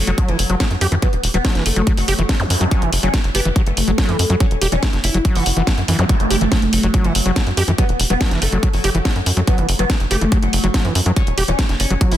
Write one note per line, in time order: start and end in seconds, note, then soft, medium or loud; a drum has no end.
0.00 0.15 F#3 medium
0.07 0.13 F#1 medium
0.07 0.11 F#3 loud
0.07 closed hi-hat soft
0.18 0.30 F#3 medium
0.18 kick loud
0.18 closed hi-hat loud
0.28 0.34 F#1 medium
0.28 0.37 E3 loud
0.28 0.94 F#3 medium
0.28 closed hi-hat soft
0.39 0.45 F#1 loud
0.39 open hi-hat loud
0.50 0.55 F#1 medium
0.50 0.55 F#3 medium
0.50 closed hi-hat soft
0.60 0.66 F#3 loud
0.60 kick loud
0.60 snare loud
0.60 closed hi-hat loud
0.71 0.77 F#2 medium
0.71 closed hi-hat soft
0.81 0.87 F#2 loud
0.81 0.87 G4 loud
0.81 open hi-hat loud
0.92 0.98 F#2 medium
0.92 0.95 E3 loud
0.92 closed hi-hat soft
1.02 1.08 F#3 loud
1.02 1.21 B3 loud
1.02 kick loud
1.02 closed hi-hat loud
1.13 1.19 E1 medium
1.13 closed hi-hat soft
1.23 1.29 E1 loud
1.23 open hi-hat loud
1.34 1.40 E1 loud
1.34 1.38 F#3 loud
1.34 1.52 B3 medium
1.34 closed hi-hat soft
1.45 1.57 F#3 medium
1.45 kick loud
1.45 snare loud
1.45 closed hi-hat loud
1.55 1.61 F#1 medium
1.55 1.64 E3 loud
1.55 snare soft
1.55 closed hi-hat soft
1.66 1.72 F#1 loud
1.66 1.84 A3 medium
1.66 open hi-hat loud
1.76 1.82 F#1 medium
1.76 1.82 F#3 medium
1.76 closed hi-hat soft
1.87 1.93 F#3 loud
1.87 kick loud
1.87 closed hi-hat medium
1.97 2.03 F#1 medium
1.97 2.63 F#3 medium
1.97 open hi-hat medium
2.08 2.14 F#1 loud
2.08 2.14 G4 loud
2.08 open hi-hat loud
2.19 2.24 F#1 medium
2.19 2.22 E3 loud
2.19 closed hi-hat soft
2.29 2.35 F#3 loud
2.29 kick loud
2.29 snare loud
2.29 closed hi-hat loud
2.40 2.46 F#2 medium
2.40 closed hi-hat soft
2.40 zap medium
2.50 2.56 F#2 loud
2.50 open hi-hat loud
2.61 2.67 F#2 medium
2.61 2.64 F#3 loud
2.61 closed hi-hat soft
2.71 2.83 F#3 medium
2.71 2.90 C#4 loud
2.71 kick loud
2.71 closed hi-hat medium
2.82 2.88 F#1 medium
2.82 2.90 E3 loud
2.82 closed hi-hat soft
2.93 2.98 F#1 loud
2.93 open hi-hat loud
3.03 3.09 F#1 medium
3.03 3.09 F#3 medium
3.03 3.21 C#4 medium
3.03 closed hi-hat soft
3.14 3.19 F#3 loud
3.14 kick loud
3.14 snare loud
3.14 closed hi-hat medium
3.24 3.30 F#1 medium
3.24 closed hi-hat soft
3.35 3.41 F#1 loud
3.35 3.53 B3 medium
3.35 3.40 G4 loud
3.35 open hi-hat loud
3.45 3.51 F#1 medium
3.45 3.49 E3 loud
3.45 closed hi-hat soft
3.56 3.62 F#3 loud
3.56 kick loud
3.56 closed hi-hat medium
3.66 3.72 F#1 medium
3.66 4.32 A3 medium
3.66 closed hi-hat soft
3.77 3.83 F#1 medium
3.77 open hi-hat loud
3.88 3.93 F#1 medium
3.88 3.91 F#3 loud
3.88 closed hi-hat soft
3.98 4.10 F#3 medium
3.98 kick loud
3.98 snare loud
3.98 closed hi-hat medium
4.09 4.15 F#2 medium
4.09 4.17 E3 loud
4.09 closed hi-hat soft
4.19 4.25 F#2 loud
4.19 open hi-hat loud
4.30 4.36 F#2 medium
4.30 4.36 F#3 medium
4.30 closed hi-hat soft
4.40 4.46 F#3 loud
4.40 4.59 C#4 loud
4.40 kick loud
4.40 closed hi-hat medium
4.51 4.57 E1 medium
4.51 closed hi-hat soft
4.62 4.67 E1 loud
4.62 4.67 G4 loud
4.62 open hi-hat loud
4.72 4.78 E1 loud
4.72 4.76 E3 loud
4.72 4.90 C#4 medium
4.72 closed hi-hat soft
4.83 4.88 F#3 loud
4.83 kick loud
4.83 snare loud
4.83 closed hi-hat medium
4.93 4.99 F#1 medium
4.93 snare soft
4.93 closed hi-hat soft
5.04 5.10 F#1 loud
5.04 5.22 E4 medium
5.04 open hi-hat loud
5.14 5.20 F#1 medium
5.14 5.18 F#3 loud
5.14 closed hi-hat soft
5.25 5.37 F#3 medium
5.25 kick loud
5.25 closed hi-hat medium
5.35 5.41 F#1 medium
5.35 5.44 E3 loud
5.35 6.01 F#4 medium
5.35 open hi-hat medium
5.46 5.52 F#1 loud
5.46 open hi-hat loud
5.57 5.62 F#1 medium
5.57 5.62 E3 loud
5.57 closed hi-hat soft
5.67 5.73 F#3 loud
5.67 kick loud
5.67 snare loud
5.67 closed hi-hat medium
5.78 5.84 F#2 medium
5.78 closed hi-hat soft
5.88 5.94 F#2 medium
5.88 5.97 E3 loud
5.88 open hi-hat loud
5.99 6.05 F#2 medium
5.99 6.05 F#3 medium
5.99 closed hi-hat soft
5.99 zap medium
6.09 6.15 F#3 loud
6.09 6.28 A3 loud
6.09 kick loud
6.09 closed hi-hat medium
6.20 6.26 F#1 medium
6.20 closed hi-hat soft
6.31 6.36 F#1 loud
6.31 6.36 G4 loud
6.31 open hi-hat loud
6.41 6.47 F#1 loud
6.41 6.45 E3 loud
6.41 6.59 A3 medium
6.41 closed hi-hat soft
6.52 6.57 F#3 loud
6.52 kick loud
6.52 snare loud
6.52 closed hi-hat medium
6.62 6.68 F#1 medium
6.62 closed hi-hat soft
6.73 6.79 F#1 loud
6.73 6.91 F#3 medium
6.73 open hi-hat loud
6.83 6.89 F#1 medium
6.83 6.87 F#3 loud
6.83 closed hi-hat soft
6.94 7.06 F#3 medium
6.94 kick loud
6.94 closed hi-hat medium
7.04 7.10 F#1 medium
7.04 7.13 E3 loud
7.04 7.70 F#3 medium
7.04 closed hi-hat soft
7.15 7.21 F#1 loud
7.15 open hi-hat loud
7.26 7.31 F#1 medium
7.26 7.31 F#3 medium
7.26 closed hi-hat soft
7.36 7.42 F#3 loud
7.36 kick loud
7.36 snare loud
7.36 closed hi-hat medium
7.47 7.53 F#2 medium
7.47 closed hi-hat soft
7.57 7.63 F#2 loud
7.57 7.63 G4 loud
7.57 open hi-hat loud
7.68 7.74 F#2 medium
7.68 7.71 E3 loud
7.68 closed hi-hat soft
7.78 7.84 F#3 loud
7.78 7.97 B3 loud
7.78 kick loud
7.78 closed hi-hat medium
7.89 7.95 E1 medium
7.89 closed hi-hat soft
8.00 8.05 E1 loud
8.00 open hi-hat loud
8.10 8.16 E1 loud
8.10 8.14 F#3 loud
8.10 8.28 B3 medium
8.10 closed hi-hat soft
8.21 8.33 F#3 medium
8.21 kick loud
8.21 snare loud
8.21 closed hi-hat medium
8.31 8.37 F#1 medium
8.31 8.40 E3 loud
8.31 snare soft
8.31 closed hi-hat soft
8.42 8.48 F#1 loud
8.42 8.60 A3 medium
8.42 open hi-hat loud
8.52 8.58 F#1 medium
8.52 8.58 F#3 medium
8.52 closed hi-hat soft
8.63 8.69 F#3 loud
8.63 kick loud
8.63 closed hi-hat medium
8.73 8.79 F#1 medium
8.73 9.39 F#3 medium
8.73 open hi-hat medium
8.84 8.90 F#1 loud
8.84 8.90 G4 loud
8.84 open hi-hat loud
8.95 9.00 F#1 medium
8.95 8.98 E3 loud
8.95 closed hi-hat soft
9.05 9.11 F#3 loud
9.05 kick loud
9.05 snare loud
9.05 closed hi-hat medium
9.16 9.22 F#2 medium
9.16 closed hi-hat soft
9.26 9.32 F#2 loud
9.26 open hi-hat loud
9.37 9.43 F#2 medium
9.37 9.40 F#3 loud
9.37 closed hi-hat soft
9.47 9.60 F#3 medium
9.47 9.66 B3 loud
9.47 kick loud
9.47 closed hi-hat loud
9.58 9.64 F#1 medium
9.58 9.67 E3 loud
9.58 closed hi-hat soft
9.69 9.74 F#1 loud
9.69 open hi-hat loud
9.79 9.85 F#1 loud
9.79 9.85 F#3 medium
9.79 9.97 B3 medium
9.79 closed hi-hat soft
9.90 9.95 F#3 loud
9.90 kick loud
9.90 snare loud
9.90 closed hi-hat loud
10.00 10.06 F#1 medium
10.00 closed hi-hat soft
10.11 10.17 F#1 loud
10.11 10.29 A3 medium
10.11 10.17 G4 loud
10.11 open hi-hat loud
10.21 10.27 F#1 loud
10.21 10.25 E3 loud
10.21 closed hi-hat soft
10.32 10.38 F#3 medium
10.32 kick loud
10.32 closed hi-hat medium
10.43 10.48 F#1 medium
10.43 11.08 F#3 medium
10.43 closed hi-hat soft
10.53 10.59 F#1 loud
10.53 open hi-hat loud
10.64 10.70 F#1 medium
10.64 10.67 F#3 loud
10.64 closed hi-hat soft
10.74 10.86 F#3 medium
10.74 kick loud
10.74 snare loud
10.74 closed hi-hat loud
10.85 10.91 F#2 medium
10.85 10.93 E3 loud
10.85 closed hi-hat soft
10.95 11.01 F#2 loud
10.95 open hi-hat loud
11.06 11.12 F#2 medium
11.06 11.12 F#3 medium
11.06 closed hi-hat soft
11.16 11.22 F#3 loud
11.16 11.35 C#4 loud
11.16 kick loud
11.16 closed hi-hat loud
11.27 11.33 E1 medium
11.27 closed hi-hat soft
11.38 11.43 E1 loud
11.38 11.43 G4 loud
11.38 open hi-hat loud
11.48 11.54 E1 loud
11.48 11.52 E3 loud
11.48 11.66 C#4 medium
11.48 closed hi-hat soft
11.59 11.64 F#3 loud
11.59 kick loud
11.59 snare loud
11.59 closed hi-hat loud
11.69 11.75 F#1 medium
11.69 snare soft
11.69 closed hi-hat soft
11.80 11.86 F#1 loud
11.80 11.98 C#4 medium
11.80 open hi-hat loud
11.90 11.96 F#1 medium
11.90 11.94 F#3 loud
11.90 closed hi-hat soft
12.01 12.13 F#3 medium
12.01 kick loud
12.01 closed hi-hat loud
12.12 12.17 F#1 medium
12.12 12.17 E3 loud
12.12 12.17 E4 medium
12.12 open hi-hat medium